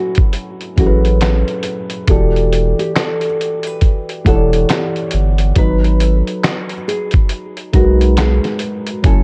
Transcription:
Already playing: F#3 C#4 E4 F#4 A4 B4 G#5
0.15 kick, closed hi-hat
0.33 closed hi-hat
0.61 closed hi-hat
0.76 A1 F#3 C#4 E4 F#4 G#4, kick, closed hi-hat
0.80 A4
0.86 B4
1.05 closed hi-hat
1.21 snare, clap, closed hi-hat
1.48 closed hi-hat
1.63 closed hi-hat
1.90 closed hi-hat
2.07 E1 E3 E4 F#4 G4 A4 D5, kick, closed hi-hat
2.36 closed hi-hat
2.53 closed hi-hat
2.79 G4, closed hi-hat
2.96 A4, snare, clap, closed hi-hat
3.21 closed hi-hat
3.41 closed hi-hat
3.63 B4, closed hi-hat
3.81 kick, closed hi-hat
4.09 closed hi-hat
4.25 E1 E3 E4 G4 A4 C#5 F#5, kick, closed hi-hat
4.35 D5
4.53 closed hi-hat
4.69 G4, snare, clap, closed hi-hat
4.96 closed hi-hat
5.11 G1, closed hi-hat
5.38 closed hi-hat
5.55 G#1 F#3 D#4 F#4 B4, kick, closed hi-hat
5.84 closed hi-hat
6.00 A4, closed hi-hat
6.27 closed hi-hat
6.44 snare, clap, closed hi-hat
6.69 closed hi-hat
6.88 G#4, closed hi-hat
7.11 kick, closed hi-hat
7.29 closed hi-hat
7.57 closed hi-hat
7.73 B1 G#3 D#4 F#4 A#4 B4, kick, closed hi-hat
8.01 closed hi-hat
8.17 G#4, snare, clap, closed hi-hat
8.44 snare, closed hi-hat
8.59 closed hi-hat
8.87 closed hi-hat
9.03 F#1 F#3 C#4 E4 A4 G#5, kick, closed hi-hat

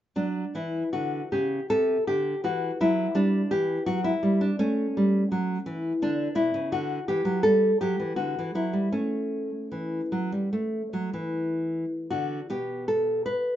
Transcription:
0.16 F#3 D4
0.55 E3 E4
0.93 D3 F#4
1.32 C#3 G4
1.70 C3 A4
2.07 D3 G4
2.44 E3 F#4
2.81 F#3 E4
3.15 G3 D4
3.51 E3 G4
3.86 F#3 F#4
4.04 E4
4.23 G3
4.41 D4
4.59 A3 C#4
4.97 G3
5.32 F#3
5.66 E3
6.02 D3 D4
6.35 B2 E4
6.54 C#3
6.72 D3 F#4
7.08 E3 G4
7.25 F#3
7.43 G3 A4
7.81 F#3 G4
8.00 E3
8.16 D3 F#4
8.39 E3
8.55 F#3 E4
8.73 G3
8.92 A3 C#4
9.72 E3
10.12 F#3
10.32 G3
10.53 A3
10.93 F#3
11.13 E3
12.10 D3 F#4
12.50 B2 G4
12.88 A4
13.26 B4

